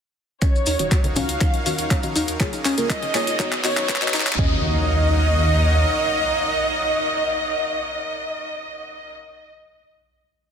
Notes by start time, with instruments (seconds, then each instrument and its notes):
0.42 synth stab D#3 C#4 F#4 D#5, synth pluck C#4, supersaw synth D#4 F#4 A#4 C#5 F5, violin section C#5, analog synth lead C#5, kick, clap, closed hi-hat, riser, maracas
0.56 maracas
0.66 detuned saw bass D#2, synth pluck D#4, open hi-hat, maracas
0.79 detuned saw bass D#1, synth stab D#3 C#4 F#4 C#5, closed hi-hat, maracas
0.91 synth pluck F#4, kick, clap, closed hi-hat, maracas
1.04 closed hi-hat, high conga
1.16 detuned saw bass C#2, synth stab D#3 C#4 F#4 D#5, synth pluck C#4, violin section F5, analog synth lead F5, open hi-hat, low conga, maracas
1.29 detuned saw bass C#2, closed hi-hat, maracas
1.41 synth stab D#3 C#4 F#4 C#5, synth pluck D#4, kick, clap, closed hi-hat, maracas
1.54 closed hi-hat
1.66 detuned saw bass D#2, synth stab D#3 C#4 F#4 D#5, synth pluck F#4, open hi-hat, maracas
1.78 detuned saw bass D#2, closed hi-hat, maracas
1.91 synth pluck C#4, kick, clap, closed hi-hat, maracas
2.03 synth stab D#3 C#4 F#4 D#5, closed hi-hat, maracas
2.16 detuned saw bass D#2, synth pluck D#4, open hi-hat, maracas
2.28 detuned saw bass D#2, closed hi-hat, maracas
2.40 synth stab C#3 A#3 F4 C#5, supersaw synth C#4 G#4 D#5, synth pluck G#4, kick, clap, closed hi-hat, maracas
2.53 closed hi-hat, maracas
2.65 detuned saw bass C#2, synth pluck C#4, clap, open hi-hat, maracas
2.78 detuned saw bass C#2, synth stab C#3 A#3 F4 A#4, closed hi-hat, maracas
2.90 synth pluck F4, analog synth lead D#5, violin section D#5, kick, clap, closed hi-hat, maracas
3.02 closed hi-hat, high conga
3.14 detuned saw bass C#2, synth stab A#3 F4 C#5, synth pluck G#4, clap, open hi-hat, low conga, maracas
3.27 detuned saw bass C#2, closed hi-hat, maracas
3.39 synth stab D#3 B3 F#4 C#5, synth pluck D#4, supersaw synth D#4 F#4 B4, kick, clap, closed hi-hat, maracas
3.52 clap, closed hi-hat
3.64 detuned saw bass D#2, synth stab D#3 B3 F#4 D#5, synth pluck F#4, violin section C#5, analog synth lead C#5, clap, open hi-hat, maracas
3.77 detuned saw bass F#2, clap, closed hi-hat, maracas
3.89 synth pluck B4, kick, clap, closed hi-hat, maracas
3.95 clap
4.02 synth stab D#3 B3 F#4 D#5, clap, closed hi-hat, maracas
4.08 clap
4.14 detuned saw bass D#2, synth pluck D#4, clap, open hi-hat, maracas
4.20 clap
4.26 detuned saw bass D#2, clap, closed hi-hat, maracas
4.32 clap
4.39 detuned saw bass D#2, synth stab C#4 F#4 D#5, synth pluck C#4, supersaw synth D#4 A#4 C#5 F5 F#5, analog synth lead D#5, violin section D#5, kick, floor tom, impact